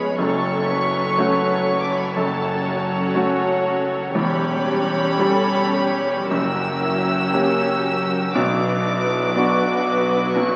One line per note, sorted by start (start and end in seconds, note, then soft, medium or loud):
0.00 0.14 F1 medium
0.00 0.14 F2 medium
0.00 0.18 F2 medium
0.00 0.16 G#3 medium
0.00 0.14 B3 medium
0.00 0.14 C#4 soft
0.00 0.16 C#4 medium
0.00 0.14 G#4 medium
0.00 0.18 G#4 medium
0.00 0.16 B4 medium
0.00 0.17 C#5 medium
0.00 0.17 B5 medium
0.17 2.11 F#1 medium
0.17 4.11 F#2 medium
0.17 2.12 F#2 medium
0.17 2.14 F#3 medium
0.17 2.11 C#4 medium
0.17 0.66 A4 medium
0.17 2.12 A4 medium
0.17 2.12 C#5 medium
0.17 1.79 C#6 loud
0.68 2.16 B4 medium
1.18 2.12 A3 medium
1.18 2.12 C#4 medium
1.18 2.12 F#4 medium
1.82 1.90 D6 medium
1.89 1.98 C#6 medium
1.97 2.06 B5 medium
2.06 2.15 C#6 medium
2.14 4.12 F#1 medium
2.14 4.12 F#2 medium
2.14 4.12 F#3 medium
2.14 4.12 C#4 medium
2.14 4.11 A4 medium
2.14 2.65 A4 medium
2.14 4.11 C#5 medium
2.14 3.13 A5 medium
2.66 4.16 F#4 medium
3.15 4.11 A3 medium
3.15 4.11 C#4 medium
3.15 4.12 F#4 medium
4.14 6.26 E1 medium
4.14 6.26 E2 medium
4.14 6.26 G3 medium
4.14 6.26 C#4 medium
4.14 5.17 G4 medium
4.14 6.27 G4 medium
4.14 6.27 C#5 medium
4.14 6.26 B5 loud
5.19 6.26 G3 medium
5.19 6.27 C#4 medium
5.19 6.27 G4 medium
5.19 5.74 A4 medium
5.74 6.30 G4 medium
6.29 8.32 F#1 medium
6.29 8.35 F#2 medium
6.29 8.32 F#2 medium
6.29 8.33 F#3 medium
6.29 8.31 C#4 medium
6.29 6.83 F#4 medium
6.29 8.31 G4 medium
6.29 8.31 A#4 medium
6.29 8.31 E6 loud
6.83 7.34 E4 medium
7.33 8.31 A#3 medium
7.33 8.31 C#4 medium
7.33 8.36 C#4 medium
7.33 8.31 G4 medium
8.33 10.56 B1 medium
8.33 10.31 B1 medium
8.33 10.31 B2 medium
8.33 9.82 B2 medium
8.33 10.56 F#3 medium
8.33 10.56 D4 medium
8.33 8.85 D4 medium
8.33 10.56 F#4 medium
8.33 10.56 B4 medium
8.33 10.30 D6 loud
8.85 9.36 E4 medium
9.36 10.31 B3 medium
9.36 10.31 D4 medium
9.36 10.34 F#4 medium
9.36 10.32 F#4 medium
10.35 10.56 B1 medium
10.35 10.56 B2 medium
10.35 10.56 F#4 medium
10.35 10.56 C#6 medium